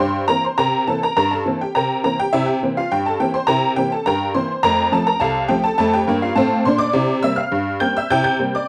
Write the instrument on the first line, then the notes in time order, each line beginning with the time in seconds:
honky-tonk piano
0.00 G2 C5 G5 C6
0.28 E3 A#3 C4 A#4 A#5
0.44 C5 C6
0.58 C3 A#4 G5 A#5
0.87 E3 A#3 C4 A4 A5
1.03 A#4 A#5
1.17 G2 A#4 A#5
1.31 A4 A5
1.46 E3 A#3 C4
1.61 G4 G5
1.75 C3 A#4 G5 A#5
2.04 E3 A#3 C4 A#4 A#5
2.19 G4 G5
2.33 C3 E4 E5
2.46 G4 G5
2.63 E3 A#3 C4
2.77 F4 F5
2.92 G2 G4 G5
3.06 A4 A5
3.20 E3 A#3 C4 G4 G5
3.34 C5 C6
3.47 C3 E4 A#4 G5 A#5
3.76 E3 A#3 C4 G4 G5
3.92 A4 A5
4.06 G2 A#4 G5 A#5
4.34 E3 A#3 C4 C5 C6
4.63 F2 A3 A#4 A#5
4.92 F3 A3 C4 A4 A5
5.07 A#4 A#5
5.20 C2 A4 F5 A5
5.48 F3 A3 C4 G4 G5
5.64 A4 A5
5.78 F2 A3 A4 A5
5.93 G4 G5
6.07 G2 A#3
6.22 F4 F5
6.35 A2 C4 A4 F5 A5
6.65 A#2 D4 C5 C6
6.78 D5 D6
6.93 C3 E4
7.23 G3 A#3 C4 E5 E6
7.36 F5 F6
7.52 G2
7.80 G3 A#3 C4 G5 G6
7.97 E5 E6
8.10 C3 E4 G5 G6
8.24 G5 G6
8.39 G3 A#3 C4
8.55 D5 D6